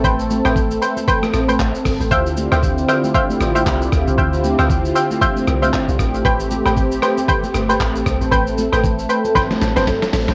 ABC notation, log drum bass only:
X:1
M:4/4
L:1/16
Q:"Swing 16ths" 1/4=116
K:Ddor
V:1 name="Log drum bass" clef=bass
A,,,3 A,,,3 z4 A,,,2 A,,, z G,,, A,,, | D,,3 D,,3 z4 A,,,2 C,,2 D,, C,, | D,,3 D,,3 z4 C,,2 z C,, A,,,2 | A,,,3 A,,,3 z4 G,,,2 A,,,2 C,, A,,, |
A,,,3 A,,,3 z2 G,,, z A,,, G,,, G,,, z A,,, A,,, |]